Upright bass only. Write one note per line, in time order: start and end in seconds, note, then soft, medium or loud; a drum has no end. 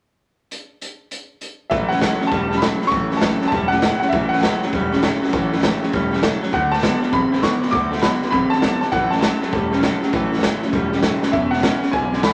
1.71 2.06 A1 medium
2.20 muted upright bass stroke medium
2.32 2.67 E1 medium
2.81 muted upright bass stroke medium
2.91 3.26 A1 medium
3.42 muted upright bass stroke medium
3.52 3.87 E1 medium
4.02 muted upright bass stroke medium
4.12 4.47 A1 loud
4.63 muted upright bass stroke medium
4.73 5.07 E1 medium
5.22 muted upright bass stroke medium
5.33 5.68 A1 medium
5.83 muted upright bass stroke medium
5.93 6.28 E1 medium
6.43 muted upright bass stroke medium
6.53 6.87 D2 loud
7.02 muted upright bass stroke medium
7.13 7.48 A1 medium
7.62 muted upright bass stroke medium
7.73 8.07 D2 medium
8.22 muted upright bass stroke medium
8.32 8.67 A1 medium
8.82 muted upright bass stroke medium
8.92 9.27 A1 loud
9.43 muted upright bass stroke medium
9.53 9.87 E1 medium
10.03 muted upright bass stroke medium
10.13 10.48 A1 medium
10.62 muted upright bass stroke medium
10.73 11.08 E1 medium
11.22 muted upright bass stroke medium
11.33 11.68 E1 medium
11.82 muted upright bass stroke medium
11.93 12.28 B1 medium